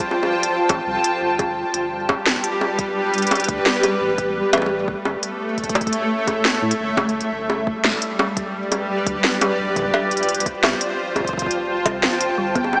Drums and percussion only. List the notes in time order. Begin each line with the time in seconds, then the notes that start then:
0.00 kick, closed hi-hat, high bongo
0.11 high bongo
0.23 high bongo
0.43 closed hi-hat
0.69 kick, closed hi-hat, high bongo
1.04 closed hi-hat
1.39 kick, closed hi-hat, high bongo
1.74 closed hi-hat
2.09 kick, high bongo
2.26 snare
2.44 closed hi-hat
2.61 high bongo
2.79 kick, closed hi-hat
3.14 closed hi-hat
3.18 closed hi-hat
3.22 closed hi-hat
3.27 closed hi-hat
3.31 closed hi-hat, high bongo
3.35 closed hi-hat
3.40 closed hi-hat
3.44 closed hi-hat
3.48 kick, closed hi-hat
3.66 snare
3.83 closed hi-hat, high bongo
4.18 kick, closed hi-hat
4.53 closed hi-hat, cowbell, high bongo
4.58 high bongo
4.62 high bongo
4.66 high bongo
4.88 kick
5.05 high bongo
5.23 closed hi-hat
5.58 kick, closed hi-hat
5.64 kick, closed hi-hat
5.69 kick, closed hi-hat
5.75 kick, closed hi-hat, high bongo
5.81 kick, closed hi-hat
5.87 kick, closed hi-hat
5.93 closed hi-hat
6.27 kick, closed hi-hat, high bongo
6.45 snare
6.71 closed hi-hat
6.97 kick, closed hi-hat, high bongo
7.09 closed hi-hat
7.21 closed hi-hat
7.50 high bongo
7.67 kick
7.84 snare
8.02 closed hi-hat
8.19 high bongo
8.37 kick, closed hi-hat
8.72 closed hi-hat, high bongo
9.07 kick, closed hi-hat
9.24 snare
9.41 closed hi-hat, high bongo
9.76 kick, closed hi-hat
9.79 kick
9.82 kick
9.85 kick
9.88 kick
9.91 kick, cowbell, high bongo
10.11 closed hi-hat
10.17 closed hi-hat
10.23 closed hi-hat
10.29 closed hi-hat
10.35 closed hi-hat
10.40 closed hi-hat
10.46 kick, closed hi-hat
10.64 snare, cowbell, high bongo
10.81 closed hi-hat
11.16 kick, closed hi-hat, high bongo
11.20 kick
11.25 kick, closed hi-hat
11.29 kick
11.33 kick
11.38 kick, closed hi-hat
11.42 kick
11.46 kick
11.51 closed hi-hat
11.86 kick, closed hi-hat, high bongo
12.03 snare
12.21 closed hi-hat
12.55 kick, closed hi-hat, high bongo
12.64 high bongo
12.73 high bongo